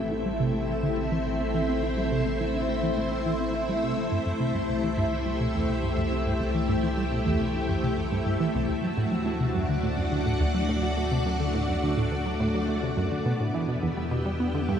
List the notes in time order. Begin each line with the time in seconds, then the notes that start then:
Already playing: A1 A3 C4 E4 G4 C5 E5 G5
0.11 E4
0.26 G3
0.40 C3
0.54 A3
0.69 E3
0.83 D3
0.97 A3
1.11 E3
1.26 A2
1.40 C4
1.54 E3
1.69 C4
1.83 E4
1.97 G3
2.12 C3
2.26 A3
2.40 E3
2.54 D3
2.69 A3
2.83 E3
2.97 A2
3.12 C4
3.26 E3
3.40 C4
3.55 E4
3.69 G3
3.83 C3
3.97 A3
4.11 C2 G2
4.26 F#2
4.40 C3
4.51 G2 G4
4.69 C2
4.83 E3
4.98 G2
5.12 E3
5.26 G3
5.40 B2
5.55 E2
5.69 C3
5.83 G2
5.97 F#2
6.12 C3
6.26 G2
6.40 C2
6.54 E3
6.69 G2
6.83 E3
6.97 G3
7.12 B2
7.26 E2
7.40 C3
7.55 G2
7.69 F#2
7.83 C3
7.98 F#2
8.12 G2
8.26 G2
8.40 E3
8.55 C2
8.69 D2
8.80 F#3 F#4
8.91 D4
8.97 A2
9.12 F#3
9.26 A3
9.35 F#5
9.40 C3
9.53 F#2 D5
9.69 D3
9.83 A2
9.97 F#2
10.12 D3
10.26 A2
10.40 D2
10.55 F#3
10.69 A2
10.83 F#3
10.97 A3
11.12 C3
11.26 F#2
11.40 D3
11.54 A2
11.69 F#2
11.83 D3
11.97 A2
12.12 D2
12.26 F#3
12.40 A2
12.54 F#3
12.69 A3
12.83 C3
12.97 F#2
13.11 D3
13.26 E2 B2 B3
13.40 A2 E4
13.54 E3
13.62 E5
13.69 B2
13.75 G4
13.83 E2
13.97 G3
14.04 G5
14.11 B2
14.26 G3
14.40 B3
14.54 D3
14.69 G2